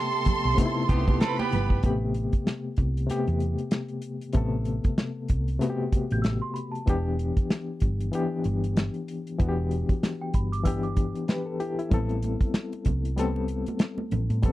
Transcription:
Already playing: C3 A3 B3 G4 A4 C6
0.13 muted conga
0.25 muted fingered electric bass stroke, kick, closed hi-hat, high conga, low conga
0.45 B1
0.55 C3 A3 B3 D#4, kick, closed hi-hat, muted conga, high conga
0.65 E4
0.89 C2 B3 G4, kick, closed hi-hat
1.08 kick, high conga
1.20 C4 A4 B4 B5, snare, closed hi-hat, muted conga
1.39 B3 G4, muted conga, high conga
1.52 G1, closed hi-hat, low conga
1.70 kick
1.82 A1 B2 A3 B3 G4, kick, closed hi-hat
1.89 C3
2.14 closed hi-hat
2.33 kick, closed hi-hat
2.47 snare, closed hi-hat
2.77 C2, kick, closed hi-hat
2.97 closed hi-hat
3.07 C3 A3 B3 G4, muted fingered electric bass stroke, snare, closed hi-hat
3.27 E2, closed hi-hat
3.40 closed hi-hat
3.58 closed hi-hat
3.71 snare, closed hi-hat
3.88 closed hi-hat
4.02 closed hi-hat
4.21 closed hi-hat
4.33 A1 C3 A3 B3, kick, closed hi-hat
4.37 A4
4.65 closed hi-hat
4.84 kick, closed hi-hat
4.98 snare, closed hi-hat
5.28 C2, kick, closed hi-hat
5.48 closed hi-hat
5.60 C3 A3 B3 F#4, snare, closed hi-hat
5.70 G4
5.92 muted fingered electric bass stroke, kick, closed hi-hat
6.11 A1 G6, closed hi-hat
6.22 E6, snare, closed hi-hat
6.42 C6
6.54 B5, closed hi-hat
6.71 A5, closed hi-hat
6.86 E1 E3 B3 D4 G4, kick, closed hi-hat
7.19 closed hi-hat
7.37 kick, closed hi-hat
7.50 snare, closed hi-hat
7.80 G1, kick, closed hi-hat
8.00 closed hi-hat
8.12 E3 B3 D4 G4, closed hi-hat
8.44 G1, closed hi-hat
8.64 closed hi-hat
8.77 snare, closed hi-hat
8.94 closed hi-hat
9.08 closed hi-hat
9.27 closed hi-hat
9.38 E1 E3 B3 D4 F#4, kick, closed hi-hat
9.49 G4
9.71 closed hi-hat
9.89 kick, closed hi-hat
10.03 snare, closed hi-hat
10.21 G5
10.34 G1 B5, kick, closed hi-hat
10.52 D6, closed hi-hat
10.64 E3 B3 D4 G4 E6, kick, closed hi-hat
10.83 D6, closed hi-hat
10.97 kick, closed hi-hat
11.15 closed hi-hat
11.28 G4 B4, snare, closed hi-hat
11.46 A4
11.60 E4 G4, closed hi-hat
11.79 E4, closed hi-hat
11.90 A1 G3 B3 C4 A4, kick, closed hi-hat, muted conga, low conga
12.09 closed hi-hat, muted conga
12.23 closed hi-hat, high conga
12.41 kick, closed hi-hat
12.54 snare, closed hi-hat, muted conga
12.73 closed hi-hat, muted conga
12.85 C2, kick, closed hi-hat, high conga, low conga
13.05 closed hi-hat
13.16 G3 B3 C4 A4, snare, closed hi-hat, high conga
13.36 muted conga
13.48 closed hi-hat
13.66 closed hi-hat, high conga
13.79 snare, closed hi-hat, muted conga
13.98 high conga
14.11 A1, closed hi-hat, low conga
14.30 A2, closed hi-hat
14.42 A1 G3 B3 C4 A4, kick, closed hi-hat, muted conga, low conga

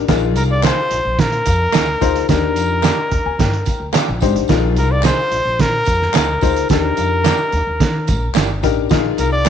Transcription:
0.08 A#1 D#4 F4 G#4 A#4, kick, snare, closed hi-hat, tambourine
0.36 C2 A#4, closed hi-hat, tambourine
0.51 D5
0.63 A#3 D#4 G#4 C5, snare, clap, closed hi-hat, tambourine
0.91 A#1, closed hi-hat
1.05 A#1
1.19 A#2 A#4, kick, snare, closed hi-hat, tambourine
1.32 closed hi-hat
1.46 F2, kick, closed hi-hat, tambourine
1.73 D2 A#3 D#4 G#4, snare, clap, closed hi-hat, tambourine
2.01 D2 D#4 F4 G#4 C5, kick, closed hi-hat, tambourine
2.16 closed hi-hat
2.28 D#2 D4 D#4 G4 A#4, kick, snare, closed hi-hat, tambourine
2.56 F2, closed hi-hat, tambourine
2.83 A#3 D4 G4, snare, clap, closed hi-hat, tambourine
3.11 D#2 A#5, kick, closed hi-hat
3.25 D#2 G#5
3.39 G2 G5, kick, snare, closed hi-hat, tambourine
3.53 closed hi-hat
3.66 muted upright bass stroke, kick, closed hi-hat, tambourine
3.80 D2
3.93 A#3 D4 G4 F5, snare, clap, closed hi-hat, tambourine
4.09 A#1
4.20 G#1 D4 D#4 G4 C5, kick, closed hi-hat, tambourine
4.35 A1, closed hi-hat
4.48 A#1 D#4 F4 G#4 A#4, kick, snare, closed hi-hat, tambourine
4.76 C2 A#4, closed hi-hat, tambourine
4.92 D5
5.03 A#3 D#4 G#4 C5, snare, clap, closed hi-hat, tambourine
5.31 A#1, closed hi-hat
5.45 A#1
5.59 A#2 A#4, kick, snare, closed hi-hat
5.85 F2, kick, closed hi-hat, tambourine
6.02 snare
6.14 D2 A#3 D#4 G#4 A#4, snare, clap, closed hi-hat, tambourine
6.41 D2 D#4 F4 G#4 C5, kick, closed hi-hat, tambourine
6.56 closed hi-hat
6.69 D#2 D4 D#4 G4 A#4, kick, snare, closed hi-hat, tambourine
6.97 F2, closed hi-hat, tambourine
7.24 A#3 D4 G4, snare, clap, closed hi-hat, tambourine
7.52 D#2, closed hi-hat, tambourine
7.67 D#2
7.80 D#3, kick, snare, closed hi-hat, tambourine
8.07 A#1, kick, closed hi-hat, tambourine
8.35 G1 A#3 D4 G4, snare, clap, closed hi-hat, tambourine
8.63 A1 D4 D#4 G4 A#4, kick, closed hi-hat, tambourine
8.89 A#1 D#4 F4 G#4 A#4, kick, snare, closed hi-hat, tambourine
9.18 C2 A#4, closed hi-hat, tambourine
9.33 D5
9.45 A#3, clap, closed hi-hat, tambourine

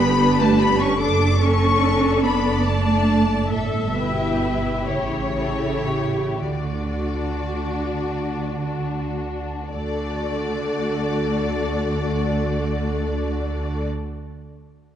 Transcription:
Already playing: G1 B3 D4 G4 B4 B5
0.17 D4 B4
0.39 A3 A5
0.58 B3 B5
0.79 C#4 C#6
1.00 F#1 D4 A4 D6
1.41 C#4 D4 A4 C#6
2.23 F#1 B3 D5 B5
2.66 A3 D4 A4 A5
3.51 G1 A2 A4 E5
3.94 B2 E4 G4 B4
4.86 A1 C#3 E4 G4 C#5
5.36 E4 G4 A4
5.89 G4
6.40 D2 D3 F#4 D5
6.94 D4 F#4
8.03 D2
8.61 D4 F#4
9.73 D2 D3 A3 F#4 A4 D5

